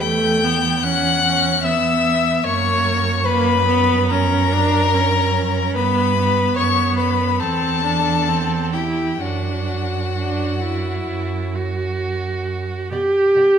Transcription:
Already playing: cello E2
0.00 viola A3, violin G5 G6
0.43 viola B3
0.83 viola C#4, violin F#5 F#6
1.23 viola C#4
1.63 viola B3, violin E5 E6
2.44 cello F#2, viola A#3, violin C#5 C#6
3.25 viola A#3, violin B4 B5
3.67 viola B3
4.10 viola C#4, violin A#4 A#5
4.52 viola D4
4.93 viola C#4
5.75 cello G2, viola B3, violin B4 B5
6.16 viola B3
6.56 cello F#2, violin C#5 C#6
6.97 violin B4 B5
7.40 cello E2, viola C4, violin A4 A5
7.84 viola D4
8.28 viola C4
8.73 viola E4, violin G4 G5
9.20 cello F#2, viola D4, violin F#4 F#5
10.14 viola D4
10.62 viola E4
11.07 cello F#2
11.55 viola F#4
12.91 cello B2, viola G4, violin D5 F#5
13.35 cello B2, violin D5 F#5

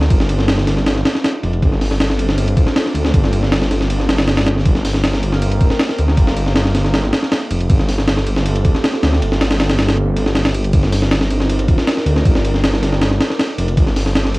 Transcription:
0.01 snare
0.10 detuned saw bass G1, ambient pad C4 D4 D#4 F4 A#4, kick, ride
0.20 snare
0.29 ride
0.39 snare
0.48 snare, ride
0.58 snare
0.67 detuned saw bass G1, snare, ride
0.77 snare
0.86 snare, ride
0.96 snare
1.05 snare, ride
1.15 snare
1.24 snare, ride
1.43 detuned saw bass F1, ride
1.53 ride
1.62 detuned saw bass G1, ambient pad A#3 C4 D4 F4 A4, kick, ride
1.72 snare
1.81 snare, open hi-hat
1.91 snare
2.00 snare, ride
2.10 snare
2.19 detuned saw bass G1, ride
2.29 snare
2.38 ride
2.48 ride
2.57 detuned saw bass D1, kick, ride
2.67 snare
2.76 snare, ride
2.86 snare
2.95 detuned saw bass D2, ride
3.05 snare
3.14 detuned saw bass G1, ambient pad A#3 C4 D4 F4 A4, kick, ride
3.24 snare
3.33 ride
3.43 snare
3.52 snare, ride
3.62 snare
3.71 detuned saw bass G1, snare, ride
3.81 snare
3.90 ride
4.00 snare
4.09 detuned saw bass G1, snare, ride
4.19 snare, ride
4.28 snare, ride
4.37 snare, ride
4.47 snare, ride
4.57 snare
4.65 detuned saw bass G1, ambient pad A#3 C4 D#4 F4 A#4, kick, ride
4.76 snare
4.85 snare, open hi-hat
4.94 snare
5.04 snare, ride
5.14 snare
5.23 detuned saw bass G1, ride
5.33 snare
5.42 ride
5.52 ride
5.61 detuned saw bass D1, kick, ride
5.70 snare
5.80 snare, ride
5.89 snare
5.99 detuned saw bass D2, ride
6.08 snare
6.17 detuned saw bass G1, ambient pad A#3 C4 D#4 F4 A#4, kick, ride
6.27 snare
6.37 ride
6.46 snare
6.56 snare, ride
6.65 snare
6.74 detuned saw bass G1, snare, ride
6.84 snare
6.94 snare, ride
7.03 snare
7.13 snare, ride
7.22 snare
7.31 snare, ride
7.50 detuned saw bass F1, ride
7.60 ride
7.69 detuned saw bass G1, ambient pad A#3 C4 F4 G4 A4, kick, ride
7.79 snare
7.88 snare, open hi-hat
7.98 snare
8.07 snare, ride
8.17 snare
8.26 detuned saw bass G1, ride
8.36 snare
8.45 ride
8.55 ride
8.64 detuned saw bass D1, kick, ride
8.74 snare
8.84 snare, ride
8.94 snare
9.03 detuned saw bass D2, snare, ride
9.13 snare
9.21 detuned saw bass G1, ambient pad A#3 C4 F4 G4 A4, ride
9.32 snare
9.41 snare, ride
9.50 snare, ride
9.60 snare, ride
9.69 snare, ride
9.78 detuned saw bass G1, snare, ride
9.89 snare, ride
10.16 detuned saw bass G1, ride
10.26 snare
10.35 snare, ride
10.45 snare, ride
10.55 ride
10.64 ride
10.73 detuned saw bass G1, ambient pad C4 D4 D#4 F4 A#4, kick, ride
10.83 snare
10.93 snare, open hi-hat
11.02 snare
11.11 snare, ride
11.21 snare
11.30 detuned saw bass G1, ride
11.40 snare
11.50 ride
11.59 ride
11.68 detuned saw bass D1, kick, ride
11.78 snare
11.88 snare, ride
11.97 snare
12.06 detuned saw bass D2, ride
12.16 snare
12.25 detuned saw bass G1, ambient pad C4 D4 D#4 F4 A#4, kick, ride
12.35 snare
12.45 ride
12.54 snare
12.64 snare, ride
12.73 snare
12.82 detuned saw bass G1, snare, ride
12.92 snare
13.01 snare, ride
13.11 snare
13.20 snare, ride
13.30 snare
13.39 snare, ride
13.58 detuned saw bass F1, ride
13.68 ride
13.77 detuned saw bass G1, ambient pad A#3 C4 D4 F4 A4, kick, ride
13.87 snare
13.96 snare, open hi-hat
14.06 snare
14.15 snare, ride
14.25 snare
14.34 detuned saw bass G1, ride

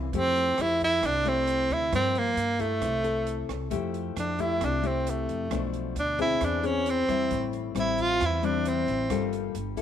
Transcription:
Already playing: upright bass C2, nylon-string guitar C3
0.13 upright bass F2, nylon-string guitar F3 A3 E4 G4, tenor saxophone C4, kick, closed hi-hat
0.36 closed hi-hat
0.58 upright bass F2, nylon-string guitar A3 E4 G4, tenor saxophone E4, cross-stick, closed hi-hat
0.80 kick, closed hi-hat
0.84 tenor saxophone E4
1.03 upright bass C2, nylon-string guitar C3, tenor saxophone D4, kick, cross-stick, closed hi-hat
1.25 nylon-string guitar A3 E4 G4, tenor saxophone C4, closed hi-hat
1.47 closed hi-hat
1.70 upright bass D2, tenor saxophone E4, kick, closed hi-hat
1.92 nylon-string guitar G2 F3 A#3 D4, upright bass G2, tenor saxophone C4, kick, cross-stick, closed hi-hat
2.15 tenor saxophone A#3, closed hi-hat
2.37 upright bass G2, closed hi-hat
2.59 tenor saxophone A3, nylon-string guitar E4 A4, kick, closed hi-hat
2.81 upright bass C2, nylon-string guitar C3, kick, cross-stick, closed hi-hat
3.04 nylon-string guitar E4 A4, closed hi-hat
3.27 closed hi-hat
3.49 upright bass C2, kick, cross-stick, closed hi-hat
3.70 upright bass F2, nylon-string guitar F3 A3 E4 G4, kick, closed hi-hat
3.94 closed hi-hat
4.16 upright bass F2, tenor saxophone D4, cross-stick, closed hi-hat
4.39 nylon-string guitar A3 E4 G4, tenor saxophone E4, kick, closed hi-hat
4.61 upright bass C2, nylon-string guitar C3, kick, cross-stick, closed hi-hat
4.65 tenor saxophone D4
4.82 nylon-string guitar A3 E4 G4, closed hi-hat
4.87 tenor saxophone C4
5.07 tenor saxophone A3, closed hi-hat
5.29 upright bass F2, kick, closed hi-hat
5.50 upright bass B1, nylon-string guitar B2 F3 A3 D4, kick, cross-stick, closed hi-hat
5.74 closed hi-hat
5.96 upright bass D2, tenor saxophone D4, closed hi-hat
6.18 nylon-string guitar C4 D4 G#4, tenor saxophone E4, kick, closed hi-hat
6.40 upright bass E2, nylon-string guitar E3, kick, cross-stick, closed hi-hat
6.45 tenor saxophone D4
6.62 nylon-string guitar C4 D4 G#4, tenor saxophone C#4, closed hi-hat
6.86 tenor saxophone C4, closed hi-hat
7.08 upright bass E2, nylon-string guitar G3 C4 E4, kick, cross-stick, closed hi-hat
7.30 upright bass A1, nylon-string guitar A2, kick, closed hi-hat
7.53 closed hi-hat
7.75 upright bass A1, nylon-string guitar G3 C4 E4, cross-stick, closed hi-hat
7.80 tenor saxophone E4
7.98 tenor saxophone F4, kick, closed hi-hat
8.20 upright bass E2, nylon-string guitar E3, kick, cross-stick, closed hi-hat
8.25 tenor saxophone E4
8.42 nylon-string guitar G3 C4 E4, tenor saxophone D4, closed hi-hat
8.65 tenor saxophone C4, closed hi-hat
8.88 upright bass A1, kick, closed hi-hat
9.10 upright bass G1, nylon-string guitar G3 A#3 F4 A4, kick, cross-stick, closed hi-hat
9.33 closed hi-hat
9.55 upright bass G1, closed hi-hat
9.77 nylon-string guitar A#3 E4 A4, kick, closed hi-hat

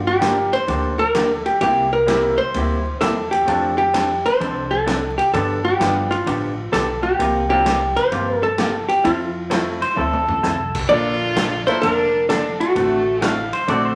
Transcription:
Already playing: upright bass G1
0.07 hollow-body jazz guitar G4
0.19 hollow-body jazz guitar D3 F3 A#3 D4 G4, upright piano A#3 D4 F4 G4, snare, hi-hat pedal, ride
0.53 hollow-body jazz guitar C5, ride
0.67 upright bass D2, hollow-body jazz guitar D3 F3 A#3 D4 G4, ride
0.99 hollow-body jazz guitar A#4
1.15 hollow-body jazz guitar D3 F3 A#3 D4 G4, snare, hi-hat pedal, ride
1.35 hollow-body jazz guitar A4
1.46 hollow-body jazz guitar G4, ride
1.61 upright bass C2, hollow-body jazz guitar C3 G3 A#3 E4 G4, ride
1.93 hollow-body jazz guitar A#4
2.06 hollow-body jazz guitar C3 G3 A#3 E4 G4, upright piano A#3 C4 E4 G4, snare, hi-hat pedal, ride
2.38 hollow-body jazz guitar C5
2.54 upright bass D2, hollow-body jazz guitar C3 G3 A#3 E4 G4, ride
3.01 upright bass E2, hollow-body jazz guitar C3 G3 A#3 E4 G4 A4, snare, hi-hat pedal, ride
3.31 hollow-body jazz guitar G4, ride
3.46 upright bass F2, hollow-body jazz guitar F3 C4 D4 A4, upright piano A3 C4 D4 F4, ride
3.78 hollow-body jazz guitar G4
3.94 hollow-body jazz guitar F3 C4 D4 A4, snare, hi-hat pedal, ride
4.26 hollow-body jazz guitar C5, ride
4.40 upright bass C2, hollow-body jazz guitar F3 C4 D4 A4, ride
4.71 hollow-body jazz guitar A4
4.86 hollow-body jazz guitar F3 C4 D4 A4, snare, hi-hat pedal, ride
5.18 hollow-body jazz guitar G4, ride
5.33 upright bass G2, hollow-body jazz guitar D3 F3 B3 D4 G4 A4, ride
5.65 hollow-body jazz guitar G4
5.78 upright bass G1, hollow-body jazz guitar D3 F3 B3 D4 G4, upright piano G3 B3 D4 F4, snare, hi-hat pedal, ride
6.11 hollow-body jazz guitar F4, ride
6.26 upright bass A1, hollow-body jazz guitar D3 F3 B3 D4 G4, ride
6.72 upright bass B1, hollow-body jazz guitar D3 F3 B3 D4 G4 A4, snare, hi-hat pedal, ride
7.03 hollow-body jazz guitar G4
7.19 upright bass C2, hollow-body jazz guitar C3 F3 A#3 F4 G4, ride
7.49 upright piano A#3 C4 D4 F4, hollow-body jazz guitar G4
7.66 hollow-body jazz guitar C3 F3 A#3 F4 G4, snare, hi-hat pedal, ride
7.96 hollow-body jazz guitar C5, ride
8.12 upright bass G1, hollow-body jazz guitar C3 F3 A#3 F4 G4, ride
8.43 hollow-body jazz guitar A4
8.58 hollow-body jazz guitar C3 F3 A#3 F4 G4, snare, hi-hat pedal, ride
8.89 hollow-body jazz guitar G4, ride
9.04 upright bass F2, hollow-body jazz guitar F3 C4 E4 F4 A4, ride
9.50 hollow-body jazz guitar F3 C4 E4 A4, upright piano A3 C4 E4 F4, snare, hi-hat pedal, ride
9.82 pedal steel guitar C5, ride
9.93 hollow-body jazz guitar F3 C4 E4
9.97 upright bass D2, hollow-body jazz guitar A4, pedal steel guitar A4, mid tom
10.13 mid tom
10.28 floor tom
10.43 upright bass C2, hollow-body jazz guitar F3 C4 E4 A4, snare, hi-hat pedal
10.75 kick, crash
10.89 upright bass A#1, hollow-body jazz guitar D3 F3 A#3 D4 A4 D5, upright piano A#3 D4 F4 A4, fiddle F4
11.36 hollow-body jazz guitar D3 F3 A#3 D4 A4, snare, hi-hat pedal, ride
11.67 upright piano A#3 D4 F4 A4, fiddle E4, hollow-body jazz guitar C5, ride
11.82 upright bass F1, hollow-body jazz guitar D3 F3 A#3 D4 A4 A#4, fiddle D4, ride
12.29 hollow-body jazz guitar D3 F3 A#3 D4 A4, fiddle D4, snare, hi-hat pedal, ride
12.60 fiddle A3, hollow-body jazz guitar F#4, ride
12.75 upright bass A1, hollow-body jazz guitar D3 A3 C4 F#4 A4, ride
13.21 hollow-body jazz guitar D3 A3 C4 E4 F#4 A4, fiddle G3, pedal steel guitar F5, snare, hi-hat pedal, ride
13.53 pedal steel guitar C5, ride
13.68 upright bass A#1, hollow-body jazz guitar D3 A3 C4 F#4 A4, upright piano C4 D4 F#4 A4, pedal steel guitar D5, ride
13.85 pedal steel guitar C5

